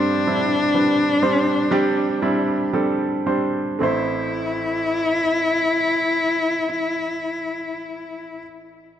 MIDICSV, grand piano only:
0, 0, Header, 1, 2, 480
1, 0, Start_track
1, 0, Key_signature, 0, "minor"
1, 0, Tempo, 967742
1, 853, Tempo, 1020408
1, 1333, Tempo, 1090909
1, 1804, Time_signature, 4, 2, 24, 8
1, 4086, End_track
2, 0, Start_track
2, 0, Title_t, "Grand piano"
2, 0, Program_c, 0, 0
2, 0, Control_c, 0, 64, 127
2, 0, Note_on_c, 0, 43, 56
2, 0, Note_on_c, 0, 55, 85
2, 0, Note_on_c, 0, 60, 77
2, 0, Note_on_c, 0, 62, 76
2, 0, Note_on_c, 0, 72, 90
2, 118, Note_off_c, 0, 55, 0
2, 118, Note_off_c, 0, 60, 0
2, 119, Note_off_c, 0, 62, 0
2, 120, Note_off_c, 0, 72, 0
2, 134, Note_on_c, 0, 55, 58
2, 135, Note_on_c, 0, 60, 57
2, 136, Note_on_c, 0, 62, 52
2, 136, Note_on_c, 0, 64, 68
2, 357, Note_off_c, 0, 55, 0
2, 357, Note_off_c, 0, 60, 0
2, 358, Note_off_c, 0, 62, 0
2, 358, Note_off_c, 0, 64, 0
2, 369, Note_on_c, 0, 55, 63
2, 369, Note_on_c, 0, 60, 50
2, 372, Note_on_c, 0, 62, 58
2, 373, Note_on_c, 0, 71, 66
2, 589, Note_off_c, 0, 43, 0
2, 597, Note_off_c, 0, 55, 0
2, 597, Note_off_c, 0, 60, 0
2, 599, Note_off_c, 0, 62, 0
2, 599, Note_off_c, 0, 71, 0
2, 607, Note_on_c, 0, 55, 78
2, 607, Note_on_c, 0, 62, 68
2, 608, Note_on_c, 0, 60, 70
2, 609, Note_on_c, 0, 72, 90
2, 841, Note_off_c, 0, 55, 0
2, 841, Note_off_c, 0, 60, 0
2, 841, Note_off_c, 0, 62, 0
2, 842, Note_off_c, 0, 72, 0
2, 849, Note_on_c, 0, 55, 94
2, 849, Note_on_c, 0, 60, 83
2, 850, Note_on_c, 0, 62, 88
2, 851, Note_on_c, 0, 67, 103
2, 1077, Note_off_c, 0, 55, 0
2, 1077, Note_off_c, 0, 60, 0
2, 1077, Note_off_c, 0, 62, 0
2, 1078, Note_off_c, 0, 67, 0
2, 1088, Note_on_c, 0, 55, 80
2, 1089, Note_on_c, 0, 62, 75
2, 1090, Note_on_c, 0, 60, 72
2, 1090, Note_on_c, 0, 64, 85
2, 1320, Note_off_c, 0, 55, 0
2, 1321, Note_off_c, 0, 60, 0
2, 1321, Note_off_c, 0, 62, 0
2, 1321, Note_off_c, 0, 64, 0
2, 1330, Note_on_c, 0, 55, 70
2, 1330, Note_on_c, 0, 60, 66
2, 1331, Note_on_c, 0, 62, 64
2, 1332, Note_on_c, 0, 69, 80
2, 1552, Note_off_c, 0, 55, 0
2, 1553, Note_off_c, 0, 60, 0
2, 1553, Note_off_c, 0, 62, 0
2, 1554, Note_off_c, 0, 69, 0
2, 1563, Note_on_c, 0, 55, 66
2, 1564, Note_on_c, 0, 60, 59
2, 1564, Note_on_c, 0, 62, 62
2, 1565, Note_on_c, 0, 72, 73
2, 1790, Note_off_c, 0, 55, 0
2, 1791, Note_off_c, 0, 60, 0
2, 1791, Note_off_c, 0, 62, 0
2, 1791, Note_off_c, 0, 72, 0
2, 1794, Note_on_c, 0, 57, 64
2, 1801, Note_on_c, 0, 60, 65
2, 1803, Note_on_c, 0, 33, 68
2, 1805, Note_on_c, 0, 64, 64
2, 1811, Control_c, 0, 64, 0
2, 1813, Note_on_c, 0, 72, 82
2, 1898, Control_c, 0, 64, 127
2, 3811, Note_off_c, 0, 57, 0
2, 3818, Note_off_c, 0, 60, 0
2, 3820, Note_off_c, 0, 33, 0
2, 3823, Note_off_c, 0, 64, 0
2, 3830, Note_off_c, 0, 72, 0
2, 4086, End_track
0, 0, End_of_file